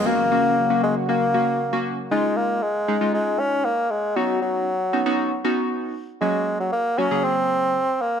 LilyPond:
<<
  \new Staff \with { instrumentName = "Synth keys" } { \time 4/4 \key fis \mixolydian \tempo 4 = 117 <ais cis' fis'>16 r16 <ais cis' fis'>8 r16 <ais cis' fis'>8 r16 <ais cis' fis'>16 r16 <ais cis' fis'>8 r16 <ais cis' fis'>8 r16 | \key des \major <aes des' ees' f'>4 r8 <aes des' ees' aes'>16 <aes des' ees' f'>4~ <aes des' ees' f'>16 r4 | <ces' des' ees' ges'>4 r8 <ces' des' ees' ges'>16 <ces' des' ees' ges'>8 r16 <ces' des' ees' ges'>4 r8 | <ges bes des' ges'>4 r8 <ges bes des' ges'>16 <des ges bes aes'>4~ <des ges bes aes'>16 r4 | }
  \new Staff \with { instrumentName = "Bassoon" } { \time 4/4 \key fis \mixolydian ais4. gis8 ais4. r8 | \key des \major aes8 bes8 aes4 aes8 des'8 bes8 aes8 | ges8 ges2 r4. | aes8. ges16 bes8 des'8 c'4. bes8 | }
  \new Staff \with { instrumentName = "Analog synth pad" } { \clef bass \time 4/4 \key fis \mixolydian <cis fis ais fis'>1 | \key des \major r1 | r1 | r1 | }
>>